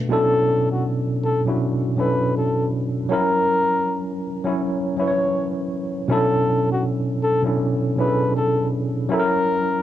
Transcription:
Already playing: B2 A3 D4 A4 B4
0.08 B2 F#3 C#4 D4 E4
0.13 A4
0.72 F#4
1.25 A4
1.45 B2 F#3 C#4 D4 E4
1.49 F#4
1.96 B2 F#3 C#4 D4 E4
2.00 A4 B4
2.37 A4
3.09 F#3 C#4 E4 A#4
3.13 A#4
4.44 F#3 C#4 E4
4.49 C#5
4.97 F#3 C#4 E4 C#5
5.01 B4
5.08 C#5
6.08 B2 F#3 C#4 D4 E4 A4
6.12 A4
6.72 F#4
7.23 A4
7.42 B2 F#3 C#4 D4 E4
7.47 A4
7.96 B2 F#3 C#4 D4 E4 B4
8.01 G#4
8.08 A4
8.36 A4
9.09 F#3 C#4 E4 A#4
9.13 A4
9.20 A#4

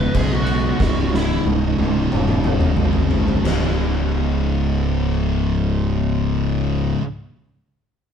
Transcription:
Already playing: C#2 G#2 C#3 B4
0.14 B1 C#2 G#2 C#3 G#4, kick, crash
0.33 F#4
0.46 C#2 G#2 C#3, crash
0.79 C#1 C#2 G#2 C#3, kick, snare
0.83 C#3
1.14 E4, snare
1.45 C#1, high tom
1.78 C#1 C#2 G#2 C#3, high tom
2.12 E1, mid tom
2.28 mid tom
2.44 mid tom
2.61 mid tom
2.76 G#1 C#2 G#2, mid tom
2.82 C#3
2.93 floor tom
3.11 C#2 G#2 C#3, floor tom
3.28 floor tom
3.43 C#1 C#2 G#2, snare, china
3.48 G#2 C#3

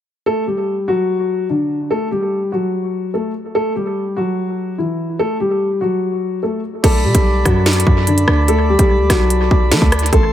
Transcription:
0.26 A3 A4
0.47 G3 G4
0.88 F#3 F#4
1.50 D3 D4
1.91 A3 A4
2.11 G3 G4
2.52 F#3 F#4
3.14 A3 A4
3.55 A3 A4
3.76 G3 G4
4.17 F#3 F#4
4.78 E3 E4
5.19 A3 A4
5.40 G3 G4
5.81 F#3 F#4
6.43 A3 A4
6.84 B1 A3 A4 D5 B5, kick, closed hi-hat, crash
7.04 B2 G3 G4
7.15 B1, kick, closed hi-hat
7.45 F#2 F#3 F#4, kick, cross-stick, closed hi-hat
7.66 snare, closed hi-hat
7.73 closed hi-hat
7.80 closed hi-hat
7.87 F#2, kick
8.07 D3 D4, closed hi-hat
8.18 closed hi-hat
8.28 D2, cross-stick
8.48 A3 A4, closed hi-hat
8.69 G3 G4
8.79 B1, kick, closed hi-hat
9.00 D2
9.10 B1 F#3 F#4, kick, cross-stick, snare, closed hi-hat
9.30 closed hi-hat
9.51 B1, kick
9.71 F#3 A3 A4, snare, closed hi-hat
9.82 D2, kick
9.92 cross-stick, closed hi-hat
9.99 closed hi-hat
10.06 closed hi-hat
10.13 A1 A3 A4 A5 C6, kick, closed hi-hat

